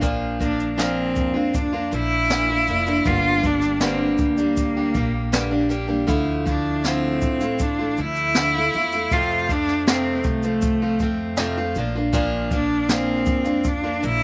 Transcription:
Already playing: A#1
0.01 A#2 F3 A#3 D4 F4, kick, shaker
0.40 F3 A#3 D4 F4, kick, shaker
0.60 shaker
0.75 A#2 F3 A#3 D4 F4
0.79 C4, snare, shaker
1.16 F2, kick, shaker
1.34 A#3 D4 F4
1.54 D4, kick, shaker
1.73 A#3 D4 F4
1.91 A#1 F3 A#3 D4 E4, shaker
2.30 A#2 F3 A#3 D4 F4, snare, shaker
2.49 A#3 D4 F4
2.67 F1 F3 A#3 D4 F4, shaker
2.86 A#3 D4 F4, shaker
3.05 G1 G2 D3 G3 A#3 D4 F4 G4, kick, shaker
3.43 G3 A#3 D4 G4, kick, shaker
3.61 snare, shaker
3.80 G2 D3 G3 A#3 D4 G4, snare, shaker
3.85 C4
4.18 D2, kick, shaker
4.22 A#3
4.37 G3 A#3 D4 G4, shaker
4.57 kick, shaker
4.77 G3 A#3 D4 G4
4.95 A#1 G3 A#3 D4 G4, kick, shaker
5.32 G2 D3 G3 A#3 D4 G4, snare, shaker
5.51 G3 A#3 D4 G4
5.69 G3 A#3 D4 G4, shaker
5.87 G3 A#3 D4 G4
6.07 D2 D3 F3 A3 E4 F4, kick, shaker
6.45 F3 A3 D4 E4 F4, kick, shaker
6.84 D3 F3 A3 C4 E4 F4, snare, shaker
7.21 A1, kick, shaker
7.40 A3 E4 F4, shaker
7.59 D4, kick, shaker
7.79 A3 E4 F4
7.97 D2 F3 A3 E4, shaker
8.16 shaker
8.35 D3 F3 A3 E4 F4, snare, shaker
8.55 A3 E4 F4
8.73 E2 F3 A3 E4 F4, shaker
8.92 A3 E4 F4, shaker
9.11 F2 C3 F3 A3 C4 F4, kick, shaker
9.49 F3 A3 C4 D4 F4, kick, shaker
9.67 snare
9.87 F2 C3 F3 A3 C4 F4, snare, shaker
10.24 C2 A3, kick, shaker
10.43 F3 A3 C4 F4, shaker
10.62 kick, shaker
10.82 F3 A3 C4 F4
10.99 F2 F3 A3 C4 F4, kick, shaker
11.37 F2 C3 F3 A3 C4 F4, snare, shaker
11.57 F3 A3 C4 F4
11.75 A#1 F3 A#3 D4 F4, shaker
11.95 A#3 D4 F4
12.13 A#2 F3 A#3 D4 F4, kick, shaker
12.51 F3 A#3 D4 F4, kick, shaker
12.89 A#2 F3 A#3 C4 D4 F4, snare, shaker
13.26 F2, kick, shaker
13.45 A#3 D4 F4, shaker
13.64 D4, kick, shaker
13.83 A#3 D4 F4
14.02 A#1 F3 A#3 D4 E4, shaker

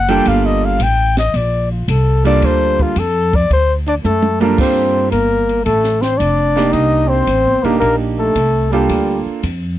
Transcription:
Already playing: F#1 F#5
0.08 G3 A#3 D4 F4 A4 G5, ride
0.25 G1 F5, kick, ride
0.46 D#5
0.65 F5
0.80 A1 G5, kick, hi-hat pedal, ride
1.17 D#5, snare, ride
1.34 A#1 D5, kick, ride
1.72 F4
1.88 C2 A4, kick, hi-hat pedal, ride
2.24 G3 A#3 D4 F4 A4 D5, ride
2.42 D2 C5, kick, ride
2.79 F4, kick
2.96 F2 A4, kick, hi-hat pedal, ride
3.33 D5, kick, ride
3.50 D2 C5, kick, ride
3.87 D4 D5, ride
4.04 F#2 A3 A4, hi-hat pedal, high tom
4.22 high tom
4.40 G3 A#3 D4 F4 A4 A#4, high tom
4.58 G2 C4 C5, kick, crash
5.11 G1 A#3 A#4, kick, hi-hat pedal, ride
5.49 ride
5.64 A1 A3 A4, kick, ride
5.84 snare
6.02 C4 C5, snare
6.18 F1 D4 D5, kick, hi-hat pedal, ride
6.56 A#3 D4 D#4 G4, snare, ride
6.70 C2 D#4 D#5, kick, ride
7.08 C4 C5
7.27 A1, kick, hi-hat pedal, ride
7.45 G1
7.63 D#1 A#3 D4 D#4 G4 A#4, ride
7.80 A#1 A#3 A#4, kick, ride
8.18 A3 A4
8.35 C2, kick, hi-hat pedal, ride
8.71 G3 A#3 D4 F4 G4 A4, ride
8.89 D2, kick, ride
9.26 muted upright bass stroke
9.43 F2, kick, hi-hat pedal, ride

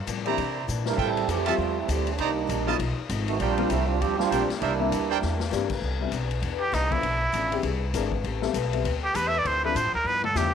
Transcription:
0.07 G2 A2 F3 A#3 C4, kick, hi-hat pedal, ride
0.26 E3 A#3 C4 D4 E4 G4 C5 D5 A#5, ride
0.37 C3 E3 A#3, kick, ride
0.42 D4
0.68 A#2 C3 E3 A#3 D4, hi-hat pedal
0.86 G3 D4 E4 A#4, snare
0.97 A2 F3 G3 A3 C4 E4 F4 A4 E5 G5, kick, crash
1.01 G4
1.17 ride
1.28 F2 E3 F3 A3 C4 E4 G4, kick, hi-hat pedal, ride
1.46 F3 G3 A3 C4 E4 F4 G4 A4 E5 A5, ride
1.58 E2 F3 A3 E4, kick
1.62 G4
1.78 G3 A3 C4 E4
1.88 D2 E3 F3 G3 A3 C4 E4 G4, kick, hi-hat pedal, ride
2.07 ride
2.14 C2 C3 D4
2.18 D#3 G3 A#3 D4 D#4 C5 D5 A#5, kick, ride
2.47 A#1 C3 D#3 A#3 D4, kick, hi-hat pedal, ride
2.67 F#3 A3 B3 D#4 F4 B4 D#5 A5
2.79 B1 B2 F3 A3 D#4, kick, ride
3.09 G#1 B2 F3 A3 D#4, kick, hi-hat pedal, ride
3.28 D#3 A3 B3 F#4, ride
3.40 A#1 A#2 G3 C4 D4 F4 A#4 C5 G5, kick, ride
3.44 D4
3.58 G3 A#3 C4 D4 F4, ride
3.69 C2 A#2 F3 G3 A3 C4 E4, kick, hi-hat pedal, ride
3.73 D4
3.88 G3 C4 D4 F4
4.00 D2 A#2 F3 G3 C4 D4 G4, kick, ride
4.04 C4 D4
4.17 G3 C4 D4 F4, snare
4.30 A#1 A#2 G3 A#3 C4 D4 G4 A#4 C5 G5, kick, hi-hat pedal, ride
4.35 D4
4.50 muted upright bass stroke, snare, ride
4.59 C2 C3 E3 G3 A#3 D4 E4 A#4 C5 E5, kick, ride
4.65 A#3 D4
4.80 G3 A#3 C4 D4 E4
4.92 D2 C3 E3 A#3 D4, kick, hi-hat pedal, ride
5.10 D4 A#4 C5 G5
5.21 E2 C3 E3 A#3, snare
5.25 D4
5.40 snare
5.51 G2 C3 E3 G3 A#3 C4 D4 G4, snare, hi-hat pedal
5.70 kick, crash
5.81 C2 C3 E3 B3 D4, kick
6.00 G3 B3 C4 D4 E4
6.11 B1 C3 E3 B3 D4, kick, hi-hat pedal, ride
6.31 ride
6.40 E2 C3 E3 B3 D4, kick, ride
6.61 G4
6.72 C2 C3 E3 B3 D4 D#4, kick, snare, hi-hat pedal, ride
6.91 F3 A3 B3 D4 E4 F4, kick, ride
7.01 B1 B2 F3 A3 D4, kick, ride
7.32 A1 B2 F3 A3 D4, kick, hi-hat pedal, ride
7.52 E3 G#3 C4 D4 G4, ride
7.62 C2 E3 C4 D4 G#4, kick, ride
7.94 G#1 E3 G#3 C4 D4 G#4 A#4, kick, snare, hi-hat pedal, ride
8.12 kick
8.24 A1 A3 C4 G4 B4, kick, ride
8.42 G3 B3 C4 E4 A4, snare
8.54 B1 A3 C4 G4 B4, kick, hi-hat pedal, ride
8.73 G3 B3 C4 E4 A4, ride
8.85 D2 A3 C4 G4 B4, kick, ride
9.04 G4
9.14 E2 A3 C4 G4 B4, kick, hi-hat pedal, ride
9.28 E5
9.38 D5
9.44 D2 D3 F3 C4 E4 C5, kick, ride
9.64 F3 C4 D4 E4 A4 B4
9.74 A2 D3 F3 C4 E4 C5, kick, hi-hat pedal, ride
9.86 F2
9.94 D2 A#4
10.04 G2 F3 B3 B4
10.09 E4
10.24 A4, mid tom
10.35 E2 G2 F3 B3 D4 E4 G4, snare, hi-hat pedal
10.39 E4

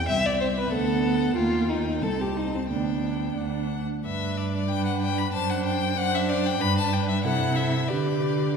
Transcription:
Already playing: E2 G5
0.08 C2 C4 E5
0.26 D5
0.41 C5
0.58 B4
0.72 D2 B3 A4 F#5
1.04 F#5
1.36 D#2 A#3 F4 G5
1.69 D#4
2.02 C2 C4 A4 A5
2.21 G4
2.37 D#4
2.55 C4
2.70 D2 B3 D4 G5
3.37 D2 D4 F#5
4.04 G2 D4 B4 E5
4.37 D5
4.69 D4 B4 G5
4.86 F#5
5.02 G5
5.18 B5
5.33 F#2 D4 C5 A5
5.50 F#5
5.66 G5
5.97 D4 C5 F#5
6.15 E5
6.29 D5
6.47 G5
6.61 G2 D4 B4 B5
6.78 A5
6.93 G5
7.09 E5
7.24 C3 E4 A4 F#5
7.56 E5
7.88 D3 G4 B4 D5

